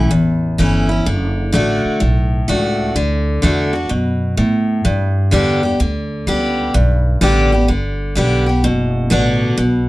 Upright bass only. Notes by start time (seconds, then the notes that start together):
Already playing: B1
0.12 A1
0.59 G1
1.06 F#1
1.54 A1
1.85 muted upright bass stroke
2.01 B1
2.48 C#2
2.95 D2
3.43 E2
3.91 F#2
4.38 A2
4.85 G2
5.33 E2
5.80 D2
6.27 C#2
6.74 B1
7.21 A1
7.69 G1
8.16 B1
8.64 F#1
9.11 A1
9.58 B1